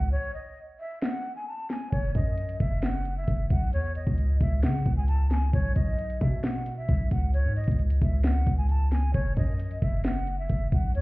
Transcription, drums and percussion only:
1.02 snare loud
1.70 snare medium
1.92 kick loud
1.92 closed hi-hat medium
2.15 kick medium
2.15 closed hi-hat medium
2.38 closed hi-hat medium
2.49 closed hi-hat soft
2.60 kick medium
2.60 closed hi-hat medium
2.82 snare loud
2.82 closed hi-hat medium
3.05 closed hi-hat medium
3.28 kick medium
3.28 closed hi-hat medium
3.50 kick medium
3.50 closed hi-hat medium
3.73 closed hi-hat medium
3.95 closed hi-hat medium
4.07 kick medium
4.18 closed hi-hat medium
4.41 kick medium
4.41 closed hi-hat medium
4.63 snare loud
4.63 closed hi-hat medium
4.86 kick medium
4.86 closed hi-hat medium
5.08 closed hi-hat medium
5.31 snare medium
5.31 closed hi-hat medium
5.53 kick loud
5.53 closed hi-hat medium
5.76 kick medium
5.76 closed hi-hat medium
5.99 closed hi-hat medium
6.10 closed hi-hat soft
6.21 kick medium
6.21 closed hi-hat medium
6.43 snare loud
6.43 closed hi-hat medium
6.66 closed hi-hat medium
6.88 kick medium
6.88 closed hi-hat medium
7.11 kick medium
7.11 closed hi-hat medium
7.34 closed hi-hat medium
7.56 closed hi-hat soft
7.64 kick medium
7.64 closed hi-hat medium
7.71 closed hi-hat medium
7.79 closed hi-hat soft
7.90 closed hi-hat medium
8.02 kick medium
8.02 closed hi-hat medium
8.24 snare loud
8.24 closed hi-hat medium
8.47 kick loud
8.47 closed hi-hat medium
8.69 closed hi-hat medium
8.92 snare medium
8.92 closed hi-hat medium
9.14 kick loud
9.14 closed hi-hat medium
9.37 kick medium
9.37 closed hi-hat medium
9.59 closed hi-hat medium
9.71 closed hi-hat soft
9.82 kick medium
9.82 closed hi-hat medium
10.04 snare loud
10.04 closed hi-hat medium
10.27 closed hi-hat medium
10.49 kick medium
10.49 closed hi-hat medium
10.72 kick loud
10.72 closed hi-hat medium
10.95 closed hi-hat medium

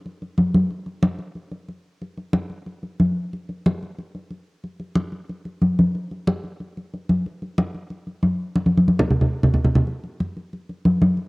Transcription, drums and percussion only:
0.06 high conga soft
0.22 high conga soft
0.38 high conga medium
0.55 high conga medium
0.71 high conga soft
0.86 high conga soft
1.03 high conga medium
1.19 high conga soft
1.35 high conga soft
1.52 high conga soft
1.69 high conga soft
2.02 high conga soft
2.18 high conga soft
2.33 high conga medium
2.50 high conga soft
2.66 high conga soft
2.83 high conga soft
3.00 high conga medium
3.33 high conga soft
3.49 high conga soft
3.66 high conga medium
3.82 high conga soft
3.98 high conga soft
4.15 high conga soft
4.30 high conga soft
4.64 high conga soft
4.80 high conga soft
4.95 high conga medium
5.12 high conga soft
5.29 high conga soft
5.45 high conga soft
5.61 high conga medium
5.79 high conga medium
5.95 high conga soft
6.11 high conga soft
6.27 high conga medium
6.44 high conga soft
6.60 high conga soft
6.77 high conga soft
6.94 high conga soft
7.09 high conga medium
7.26 high conga soft
7.42 high conga soft
7.58 high conga medium
7.74 high conga soft
7.90 high conga soft
8.07 high conga soft
8.23 high conga medium
8.56 high conga medium
8.66 high conga medium
8.78 high conga medium
8.88 high conga medium
8.99 low conga medium
9.10 low conga medium
9.21 low conga medium
9.43 low conga medium
9.54 low conga medium
9.64 low conga medium
9.75 low conga medium
9.87 high conga soft
10.04 high conga soft
10.20 high conga medium
10.37 high conga soft
10.53 high conga soft
10.69 high conga soft
10.85 high conga medium
11.02 high conga medium
11.17 high conga soft

